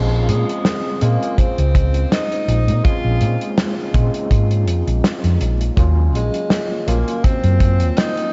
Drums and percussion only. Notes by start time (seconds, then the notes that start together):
0.29 closed hi-hat
0.49 closed hi-hat
0.65 snare, closed hi-hat
1.01 closed hi-hat
1.23 closed hi-hat
1.38 kick, closed hi-hat
1.58 closed hi-hat
1.75 kick, closed hi-hat
1.94 closed hi-hat
2.12 snare, closed hi-hat
2.32 closed hi-hat
2.49 closed hi-hat
2.68 closed hi-hat
2.85 kick, closed hi-hat
3.21 closed hi-hat
3.41 closed hi-hat
3.58 snare, closed hi-hat
3.94 kick, closed hi-hat
4.14 closed hi-hat
4.31 kick, closed hi-hat
4.51 closed hi-hat
4.68 closed hi-hat
4.88 closed hi-hat
5.04 snare, closed hi-hat
5.24 closed hi-hat
5.41 closed hi-hat
5.61 closed hi-hat
5.77 kick, closed hi-hat
6.15 closed hi-hat
6.34 closed hi-hat
6.50 snare, closed hi-hat
6.88 closed hi-hat
7.08 closed hi-hat
7.24 kick, closed hi-hat
7.44 closed hi-hat
7.60 kick, closed hi-hat
7.80 closed hi-hat
7.97 snare, closed hi-hat
8.17 closed hi-hat